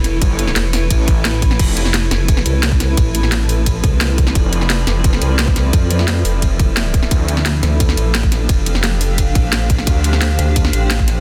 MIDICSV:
0, 0, Header, 1, 6, 480
1, 0, Start_track
1, 0, Tempo, 344828
1, 301, Time_signature, 4, 2, 24, 8
1, 15592, End_track
2, 0, Start_track
2, 0, Title_t, "Ambient pad"
2, 0, Program_c, 0, 92
2, 0, Note_on_c, 0, 64, 84
2, 0, Note_on_c, 0, 69, 85
2, 0, Note_on_c, 0, 71, 85
2, 0, Note_on_c, 0, 73, 94
2, 2220, Note_off_c, 0, 73, 0
2, 3602, Note_on_c, 0, 74, 85
2, 9901, Note_off_c, 0, 64, 0
2, 9901, Note_off_c, 0, 71, 0
2, 9902, Note_on_c, 0, 62, 94
2, 9994, Note_on_c, 0, 67, 92
2, 10415, Note_on_c, 0, 72, 82
2, 10716, Note_on_c, 0, 77, 93
2, 11299, Note_off_c, 0, 69, 0
2, 11430, Note_off_c, 0, 74, 0
2, 15592, Note_off_c, 0, 62, 0
2, 15592, Note_off_c, 0, 67, 0
2, 15592, Note_off_c, 0, 72, 0
2, 15592, Note_off_c, 0, 77, 0
2, 15592, End_track
3, 0, Start_track
3, 0, Title_t, "Synth drone"
3, 0, Program_c, 1, 95
3, 2220, Note_on_c, 1, 60, 74
3, 2221, Note_on_c, 1, 53, 80
3, 2221, Note_on_c, 1, 69, 74
3, 6059, Note_on_c, 1, 76, 90
3, 9845, Note_off_c, 1, 60, 0
3, 9861, Note_off_c, 1, 76, 0
3, 9899, Note_on_c, 1, 62, 73
3, 9899, Note_on_c, 1, 77, 89
3, 13685, Note_off_c, 1, 69, 0
3, 13740, Note_on_c, 1, 67, 76
3, 15592, Note_off_c, 1, 53, 0
3, 15592, Note_off_c, 1, 62, 0
3, 15592, Note_off_c, 1, 67, 0
3, 15592, Note_off_c, 1, 77, 0
3, 15592, End_track
4, 0, Start_track
4, 0, Title_t, "Detuned saw bass"
4, 0, Program_c, 2, 39
4, 300, Note_on_c, 2, 31, 99
4, 761, Note_off_c, 2, 31, 0
4, 1260, Note_on_c, 2, 33, 100
4, 1721, Note_off_c, 2, 33, 0
4, 1740, Note_on_c, 2, 33, 100
4, 2201, Note_off_c, 2, 33, 0
4, 2220, Note_on_c, 2, 29, 98
4, 2921, Note_off_c, 2, 29, 0
4, 6060, Note_on_c, 2, 29, 98
4, 6761, Note_off_c, 2, 29, 0
4, 9900, Note_on_c, 2, 38, 96
4, 10601, Note_off_c, 2, 38, 0
4, 13740, Note_on_c, 2, 38, 102
4, 14441, Note_off_c, 2, 38, 0
4, 15592, End_track
5, 0, Start_track
5, 0, Title_t, "Wobble bass"
5, 0, Program_c, 3, 39
5, 0, Note_on_c, 3, 28, 100
5, 281, Note_off_c, 3, 28, 0
5, 781, Note_on_c, 3, 28, 97
5, 1241, Note_off_c, 3, 28, 0
5, 2940, Note_on_c, 3, 29, 99
5, 3401, Note_off_c, 3, 29, 0
5, 3420, Note_on_c, 3, 36, 101
5, 4121, Note_off_c, 3, 36, 0
5, 4140, Note_on_c, 3, 33, 98
5, 5321, Note_off_c, 3, 33, 0
5, 5340, Note_on_c, 3, 36, 101
5, 6041, Note_off_c, 3, 36, 0
5, 6780, Note_on_c, 3, 29, 100
5, 7241, Note_off_c, 3, 29, 0
5, 7260, Note_on_c, 3, 36, 101
5, 7961, Note_off_c, 3, 36, 0
5, 7980, Note_on_c, 3, 41, 102
5, 8681, Note_off_c, 3, 41, 0
5, 8700, Note_on_c, 3, 29, 100
5, 9881, Note_off_c, 3, 29, 0
5, 10620, Note_on_c, 3, 38, 100
5, 11081, Note_off_c, 3, 38, 0
5, 11100, Note_on_c, 3, 33, 97
5, 11801, Note_off_c, 3, 33, 0
5, 11820, Note_on_c, 3, 29, 99
5, 13001, Note_off_c, 3, 29, 0
5, 13020, Note_on_c, 3, 33, 102
5, 13721, Note_off_c, 3, 33, 0
5, 14460, Note_on_c, 3, 38, 98
5, 14921, Note_off_c, 3, 38, 0
5, 14940, Note_on_c, 3, 33, 101
5, 15592, Note_off_c, 3, 33, 0
5, 15592, End_track
6, 0, Start_track
6, 0, Title_t, "Drums"
6, 60, Note_on_c, 9, 40, 32
6, 60, Note_on_c, 9, 42, 68
6, 60, Note_on_c, 9, 53, 56
6, 199, Note_off_c, 9, 40, 0
6, 199, Note_off_c, 9, 42, 0
6, 199, Note_off_c, 9, 53, 0
6, 300, Note_on_c, 9, 36, 113
6, 300, Note_on_c, 9, 42, 100
6, 300, Note_on_c, 9, 53, 81
6, 439, Note_off_c, 9, 42, 0
6, 439, Note_off_c, 9, 53, 0
6, 440, Note_off_c, 9, 36, 0
6, 540, Note_on_c, 9, 42, 73
6, 540, Note_on_c, 9, 53, 56
6, 660, Note_on_c, 9, 40, 36
6, 679, Note_off_c, 9, 42, 0
6, 679, Note_off_c, 9, 53, 0
6, 780, Note_on_c, 9, 38, 118
6, 780, Note_on_c, 9, 42, 98
6, 780, Note_on_c, 9, 53, 77
6, 799, Note_off_c, 9, 40, 0
6, 919, Note_off_c, 9, 38, 0
6, 919, Note_off_c, 9, 42, 0
6, 919, Note_off_c, 9, 53, 0
6, 1020, Note_on_c, 9, 40, 58
6, 1020, Note_on_c, 9, 46, 79
6, 1020, Note_on_c, 9, 53, 55
6, 1159, Note_off_c, 9, 40, 0
6, 1159, Note_off_c, 9, 46, 0
6, 1159, Note_off_c, 9, 53, 0
6, 1260, Note_on_c, 9, 36, 61
6, 1260, Note_on_c, 9, 42, 98
6, 1260, Note_on_c, 9, 53, 76
6, 1399, Note_off_c, 9, 42, 0
6, 1399, Note_off_c, 9, 53, 0
6, 1400, Note_off_c, 9, 36, 0
6, 1500, Note_on_c, 9, 36, 102
6, 1500, Note_on_c, 9, 42, 69
6, 1500, Note_on_c, 9, 53, 55
6, 1639, Note_off_c, 9, 36, 0
6, 1639, Note_off_c, 9, 42, 0
6, 1639, Note_off_c, 9, 53, 0
6, 1740, Note_on_c, 9, 38, 117
6, 1740, Note_on_c, 9, 42, 102
6, 1740, Note_on_c, 9, 53, 81
6, 1879, Note_off_c, 9, 38, 0
6, 1879, Note_off_c, 9, 42, 0
6, 1879, Note_off_c, 9, 53, 0
6, 1980, Note_on_c, 9, 36, 107
6, 1980, Note_on_c, 9, 42, 69
6, 1980, Note_on_c, 9, 53, 57
6, 2100, Note_on_c, 9, 40, 50
6, 2119, Note_off_c, 9, 36, 0
6, 2119, Note_off_c, 9, 42, 0
6, 2119, Note_off_c, 9, 53, 0
6, 2220, Note_on_c, 9, 36, 121
6, 2220, Note_on_c, 9, 42, 102
6, 2220, Note_on_c, 9, 49, 80
6, 2220, Note_on_c, 9, 53, 77
6, 2239, Note_off_c, 9, 40, 0
6, 2359, Note_off_c, 9, 36, 0
6, 2359, Note_off_c, 9, 42, 0
6, 2359, Note_off_c, 9, 49, 0
6, 2359, Note_off_c, 9, 53, 0
6, 2460, Note_on_c, 9, 42, 70
6, 2460, Note_on_c, 9, 53, 53
6, 2580, Note_on_c, 9, 40, 37
6, 2599, Note_off_c, 9, 42, 0
6, 2599, Note_off_c, 9, 53, 0
6, 2700, Note_on_c, 9, 38, 121
6, 2700, Note_on_c, 9, 42, 98
6, 2700, Note_on_c, 9, 53, 73
6, 2720, Note_off_c, 9, 40, 0
6, 2839, Note_off_c, 9, 38, 0
6, 2839, Note_off_c, 9, 42, 0
6, 2839, Note_off_c, 9, 53, 0
6, 2940, Note_on_c, 9, 40, 57
6, 2940, Note_on_c, 9, 42, 72
6, 2940, Note_on_c, 9, 53, 52
6, 3080, Note_off_c, 9, 40, 0
6, 3080, Note_off_c, 9, 42, 0
6, 3080, Note_off_c, 9, 53, 0
6, 3180, Note_on_c, 9, 36, 110
6, 3180, Note_on_c, 9, 42, 96
6, 3180, Note_on_c, 9, 53, 75
6, 3300, Note_on_c, 9, 40, 50
6, 3319, Note_off_c, 9, 36, 0
6, 3319, Note_off_c, 9, 42, 0
6, 3319, Note_off_c, 9, 53, 0
6, 3420, Note_on_c, 9, 42, 68
6, 3420, Note_on_c, 9, 53, 53
6, 3439, Note_off_c, 9, 40, 0
6, 3560, Note_off_c, 9, 42, 0
6, 3560, Note_off_c, 9, 53, 0
6, 3660, Note_on_c, 9, 38, 125
6, 3660, Note_on_c, 9, 42, 100
6, 3660, Note_on_c, 9, 53, 76
6, 3780, Note_on_c, 9, 36, 108
6, 3799, Note_off_c, 9, 38, 0
6, 3799, Note_off_c, 9, 42, 0
6, 3799, Note_off_c, 9, 53, 0
6, 3901, Note_on_c, 9, 40, 35
6, 3901, Note_on_c, 9, 42, 68
6, 3901, Note_on_c, 9, 53, 54
6, 3919, Note_off_c, 9, 36, 0
6, 4040, Note_off_c, 9, 40, 0
6, 4040, Note_off_c, 9, 42, 0
6, 4040, Note_off_c, 9, 53, 0
6, 4140, Note_on_c, 9, 36, 124
6, 4140, Note_on_c, 9, 42, 99
6, 4140, Note_on_c, 9, 53, 74
6, 4279, Note_off_c, 9, 36, 0
6, 4279, Note_off_c, 9, 42, 0
6, 4279, Note_off_c, 9, 53, 0
6, 4380, Note_on_c, 9, 42, 67
6, 4380, Note_on_c, 9, 53, 53
6, 4500, Note_on_c, 9, 40, 38
6, 4520, Note_off_c, 9, 42, 0
6, 4520, Note_off_c, 9, 53, 0
6, 4620, Note_on_c, 9, 38, 127
6, 4620, Note_on_c, 9, 42, 96
6, 4620, Note_on_c, 9, 53, 73
6, 4639, Note_off_c, 9, 40, 0
6, 4759, Note_off_c, 9, 38, 0
6, 4759, Note_off_c, 9, 42, 0
6, 4759, Note_off_c, 9, 53, 0
6, 4860, Note_on_c, 9, 46, 73
6, 4860, Note_on_c, 9, 53, 52
6, 4999, Note_off_c, 9, 46, 0
6, 4999, Note_off_c, 9, 53, 0
6, 5100, Note_on_c, 9, 36, 65
6, 5100, Note_on_c, 9, 42, 99
6, 5100, Note_on_c, 9, 53, 72
6, 5239, Note_off_c, 9, 36, 0
6, 5239, Note_off_c, 9, 42, 0
6, 5239, Note_off_c, 9, 53, 0
6, 5340, Note_on_c, 9, 36, 109
6, 5340, Note_on_c, 9, 42, 67
6, 5340, Note_on_c, 9, 53, 52
6, 5479, Note_off_c, 9, 36, 0
6, 5479, Note_off_c, 9, 42, 0
6, 5479, Note_off_c, 9, 53, 0
6, 5580, Note_on_c, 9, 38, 127
6, 5580, Note_on_c, 9, 42, 95
6, 5580, Note_on_c, 9, 53, 74
6, 5719, Note_off_c, 9, 38, 0
6, 5719, Note_off_c, 9, 42, 0
6, 5719, Note_off_c, 9, 53, 0
6, 5820, Note_on_c, 9, 36, 114
6, 5820, Note_on_c, 9, 42, 69
6, 5820, Note_on_c, 9, 53, 51
6, 5940, Note_on_c, 9, 40, 52
6, 5959, Note_off_c, 9, 36, 0
6, 5959, Note_off_c, 9, 42, 0
6, 5959, Note_off_c, 9, 53, 0
6, 6060, Note_on_c, 9, 36, 127
6, 6060, Note_on_c, 9, 42, 95
6, 6060, Note_on_c, 9, 53, 73
6, 6079, Note_off_c, 9, 40, 0
6, 6199, Note_off_c, 9, 36, 0
6, 6199, Note_off_c, 9, 42, 0
6, 6199, Note_off_c, 9, 53, 0
6, 6300, Note_on_c, 9, 42, 65
6, 6300, Note_on_c, 9, 53, 50
6, 6420, Note_on_c, 9, 40, 36
6, 6440, Note_off_c, 9, 42, 0
6, 6440, Note_off_c, 9, 53, 0
6, 6540, Note_on_c, 9, 38, 127
6, 6540, Note_on_c, 9, 42, 92
6, 6540, Note_on_c, 9, 53, 75
6, 6560, Note_off_c, 9, 40, 0
6, 6679, Note_off_c, 9, 38, 0
6, 6679, Note_off_c, 9, 42, 0
6, 6679, Note_off_c, 9, 53, 0
6, 6780, Note_on_c, 9, 40, 57
6, 6780, Note_on_c, 9, 42, 64
6, 6780, Note_on_c, 9, 53, 52
6, 6919, Note_off_c, 9, 40, 0
6, 6919, Note_off_c, 9, 42, 0
6, 6919, Note_off_c, 9, 53, 0
6, 7020, Note_on_c, 9, 36, 119
6, 7020, Note_on_c, 9, 42, 89
6, 7020, Note_on_c, 9, 53, 74
6, 7140, Note_on_c, 9, 40, 50
6, 7159, Note_off_c, 9, 36, 0
6, 7159, Note_off_c, 9, 42, 0
6, 7159, Note_off_c, 9, 53, 0
6, 7260, Note_on_c, 9, 42, 67
6, 7260, Note_on_c, 9, 53, 52
6, 7279, Note_off_c, 9, 40, 0
6, 7400, Note_off_c, 9, 42, 0
6, 7400, Note_off_c, 9, 53, 0
6, 7500, Note_on_c, 9, 38, 127
6, 7500, Note_on_c, 9, 42, 96
6, 7500, Note_on_c, 9, 53, 73
6, 7620, Note_on_c, 9, 36, 114
6, 7639, Note_off_c, 9, 38, 0
6, 7639, Note_off_c, 9, 42, 0
6, 7639, Note_off_c, 9, 53, 0
6, 7740, Note_on_c, 9, 40, 35
6, 7740, Note_on_c, 9, 42, 63
6, 7740, Note_on_c, 9, 53, 53
6, 7759, Note_off_c, 9, 36, 0
6, 7879, Note_off_c, 9, 40, 0
6, 7879, Note_off_c, 9, 42, 0
6, 7879, Note_off_c, 9, 53, 0
6, 7980, Note_on_c, 9, 36, 127
6, 7980, Note_on_c, 9, 42, 93
6, 7980, Note_on_c, 9, 53, 72
6, 8119, Note_off_c, 9, 36, 0
6, 8119, Note_off_c, 9, 42, 0
6, 8119, Note_off_c, 9, 53, 0
6, 8220, Note_on_c, 9, 42, 64
6, 8220, Note_on_c, 9, 53, 51
6, 8340, Note_on_c, 9, 40, 35
6, 8359, Note_off_c, 9, 42, 0
6, 8359, Note_off_c, 9, 53, 0
6, 8460, Note_on_c, 9, 38, 124
6, 8460, Note_on_c, 9, 42, 90
6, 8460, Note_on_c, 9, 53, 72
6, 8479, Note_off_c, 9, 40, 0
6, 8599, Note_off_c, 9, 38, 0
6, 8599, Note_off_c, 9, 42, 0
6, 8599, Note_off_c, 9, 53, 0
6, 8700, Note_on_c, 9, 46, 82
6, 8700, Note_on_c, 9, 53, 51
6, 8839, Note_off_c, 9, 46, 0
6, 8839, Note_off_c, 9, 53, 0
6, 8940, Note_on_c, 9, 36, 66
6, 8940, Note_on_c, 9, 42, 89
6, 8940, Note_on_c, 9, 53, 73
6, 9079, Note_off_c, 9, 36, 0
6, 9080, Note_off_c, 9, 42, 0
6, 9080, Note_off_c, 9, 53, 0
6, 9180, Note_on_c, 9, 36, 112
6, 9180, Note_on_c, 9, 42, 63
6, 9180, Note_on_c, 9, 53, 54
6, 9319, Note_off_c, 9, 36, 0
6, 9319, Note_off_c, 9, 42, 0
6, 9319, Note_off_c, 9, 53, 0
6, 9420, Note_on_c, 9, 38, 127
6, 9420, Note_on_c, 9, 42, 89
6, 9420, Note_on_c, 9, 53, 76
6, 9559, Note_off_c, 9, 38, 0
6, 9559, Note_off_c, 9, 42, 0
6, 9559, Note_off_c, 9, 53, 0
6, 9660, Note_on_c, 9, 36, 114
6, 9660, Note_on_c, 9, 42, 63
6, 9660, Note_on_c, 9, 53, 51
6, 9780, Note_on_c, 9, 40, 48
6, 9799, Note_off_c, 9, 36, 0
6, 9799, Note_off_c, 9, 42, 0
6, 9799, Note_off_c, 9, 53, 0
6, 9900, Note_on_c, 9, 36, 122
6, 9900, Note_on_c, 9, 42, 91
6, 9900, Note_on_c, 9, 53, 79
6, 9919, Note_off_c, 9, 40, 0
6, 10039, Note_off_c, 9, 36, 0
6, 10039, Note_off_c, 9, 42, 0
6, 10039, Note_off_c, 9, 53, 0
6, 10140, Note_on_c, 9, 42, 65
6, 10140, Note_on_c, 9, 53, 53
6, 10260, Note_on_c, 9, 40, 35
6, 10279, Note_off_c, 9, 42, 0
6, 10279, Note_off_c, 9, 53, 0
6, 10380, Note_on_c, 9, 38, 124
6, 10380, Note_on_c, 9, 42, 92
6, 10380, Note_on_c, 9, 53, 78
6, 10399, Note_off_c, 9, 40, 0
6, 10519, Note_off_c, 9, 38, 0
6, 10519, Note_off_c, 9, 42, 0
6, 10519, Note_off_c, 9, 53, 0
6, 10620, Note_on_c, 9, 40, 53
6, 10620, Note_on_c, 9, 42, 67
6, 10620, Note_on_c, 9, 53, 53
6, 10759, Note_off_c, 9, 40, 0
6, 10759, Note_off_c, 9, 42, 0
6, 10759, Note_off_c, 9, 53, 0
6, 10860, Note_on_c, 9, 36, 107
6, 10860, Note_on_c, 9, 42, 90
6, 10860, Note_on_c, 9, 53, 76
6, 10980, Note_on_c, 9, 40, 45
6, 10999, Note_off_c, 9, 36, 0
6, 10999, Note_off_c, 9, 42, 0
6, 10999, Note_off_c, 9, 53, 0
6, 11100, Note_on_c, 9, 42, 64
6, 11100, Note_on_c, 9, 53, 53
6, 11120, Note_off_c, 9, 40, 0
6, 11239, Note_off_c, 9, 42, 0
6, 11239, Note_off_c, 9, 53, 0
6, 11340, Note_on_c, 9, 38, 125
6, 11340, Note_on_c, 9, 42, 90
6, 11340, Note_on_c, 9, 53, 80
6, 11460, Note_on_c, 9, 36, 108
6, 11479, Note_off_c, 9, 38, 0
6, 11479, Note_off_c, 9, 42, 0
6, 11479, Note_off_c, 9, 53, 0
6, 11580, Note_on_c, 9, 40, 33
6, 11580, Note_on_c, 9, 42, 65
6, 11580, Note_on_c, 9, 53, 52
6, 11600, Note_off_c, 9, 36, 0
6, 11719, Note_off_c, 9, 40, 0
6, 11719, Note_off_c, 9, 42, 0
6, 11719, Note_off_c, 9, 53, 0
6, 11820, Note_on_c, 9, 36, 116
6, 11820, Note_on_c, 9, 42, 92
6, 11820, Note_on_c, 9, 53, 78
6, 11959, Note_off_c, 9, 36, 0
6, 11959, Note_off_c, 9, 42, 0
6, 11959, Note_off_c, 9, 53, 0
6, 12060, Note_on_c, 9, 42, 65
6, 12060, Note_on_c, 9, 53, 55
6, 12180, Note_on_c, 9, 40, 35
6, 12199, Note_off_c, 9, 42, 0
6, 12199, Note_off_c, 9, 53, 0
6, 12300, Note_on_c, 9, 38, 117
6, 12300, Note_on_c, 9, 42, 94
6, 12300, Note_on_c, 9, 53, 78
6, 12319, Note_off_c, 9, 40, 0
6, 12439, Note_off_c, 9, 38, 0
6, 12439, Note_off_c, 9, 42, 0
6, 12439, Note_off_c, 9, 53, 0
6, 12540, Note_on_c, 9, 46, 83
6, 12540, Note_on_c, 9, 53, 56
6, 12679, Note_off_c, 9, 46, 0
6, 12679, Note_off_c, 9, 53, 0
6, 12780, Note_on_c, 9, 36, 64
6, 12780, Note_on_c, 9, 42, 95
6, 12780, Note_on_c, 9, 53, 77
6, 12919, Note_off_c, 9, 36, 0
6, 12919, Note_off_c, 9, 42, 0
6, 12919, Note_off_c, 9, 53, 0
6, 13020, Note_on_c, 9, 36, 105
6, 13020, Note_on_c, 9, 42, 67
6, 13020, Note_on_c, 9, 53, 57
6, 13159, Note_off_c, 9, 42, 0
6, 13159, Note_off_c, 9, 53, 0
6, 13160, Note_off_c, 9, 36, 0
6, 13260, Note_on_c, 9, 38, 125
6, 13260, Note_on_c, 9, 42, 97
6, 13260, Note_on_c, 9, 53, 80
6, 13399, Note_off_c, 9, 38, 0
6, 13399, Note_off_c, 9, 42, 0
6, 13399, Note_off_c, 9, 53, 0
6, 13500, Note_on_c, 9, 36, 107
6, 13500, Note_on_c, 9, 42, 65
6, 13500, Note_on_c, 9, 53, 56
6, 13620, Note_on_c, 9, 40, 46
6, 13639, Note_off_c, 9, 36, 0
6, 13639, Note_off_c, 9, 42, 0
6, 13639, Note_off_c, 9, 53, 0
6, 13740, Note_on_c, 9, 36, 115
6, 13740, Note_on_c, 9, 42, 103
6, 13740, Note_on_c, 9, 53, 78
6, 13759, Note_off_c, 9, 40, 0
6, 13879, Note_off_c, 9, 36, 0
6, 13879, Note_off_c, 9, 42, 0
6, 13879, Note_off_c, 9, 53, 0
6, 13980, Note_on_c, 9, 42, 67
6, 13980, Note_on_c, 9, 53, 56
6, 14100, Note_on_c, 9, 40, 35
6, 14119, Note_off_c, 9, 42, 0
6, 14119, Note_off_c, 9, 53, 0
6, 14219, Note_on_c, 9, 38, 116
6, 14219, Note_on_c, 9, 42, 94
6, 14219, Note_on_c, 9, 53, 82
6, 14239, Note_off_c, 9, 40, 0
6, 14359, Note_off_c, 9, 38, 0
6, 14359, Note_off_c, 9, 42, 0
6, 14359, Note_off_c, 9, 53, 0
6, 14460, Note_on_c, 9, 42, 68
6, 14460, Note_on_c, 9, 53, 57
6, 14599, Note_off_c, 9, 42, 0
6, 14599, Note_off_c, 9, 53, 0
6, 14700, Note_on_c, 9, 36, 104
6, 14700, Note_on_c, 9, 42, 94
6, 14700, Note_on_c, 9, 53, 82
6, 14820, Note_on_c, 9, 40, 46
6, 14839, Note_off_c, 9, 36, 0
6, 14839, Note_off_c, 9, 42, 0
6, 14839, Note_off_c, 9, 53, 0
6, 14940, Note_on_c, 9, 42, 68
6, 14940, Note_on_c, 9, 53, 57
6, 14959, Note_off_c, 9, 40, 0
6, 15080, Note_off_c, 9, 42, 0
6, 15080, Note_off_c, 9, 53, 0
6, 15180, Note_on_c, 9, 38, 123
6, 15180, Note_on_c, 9, 42, 99
6, 15180, Note_on_c, 9, 53, 82
6, 15300, Note_on_c, 9, 36, 101
6, 15319, Note_off_c, 9, 38, 0
6, 15319, Note_off_c, 9, 42, 0
6, 15319, Note_off_c, 9, 53, 0
6, 15420, Note_on_c, 9, 40, 34
6, 15420, Note_on_c, 9, 42, 69
6, 15420, Note_on_c, 9, 53, 56
6, 15439, Note_off_c, 9, 36, 0
6, 15559, Note_off_c, 9, 40, 0
6, 15559, Note_off_c, 9, 42, 0
6, 15559, Note_off_c, 9, 53, 0
6, 15592, End_track
0, 0, End_of_file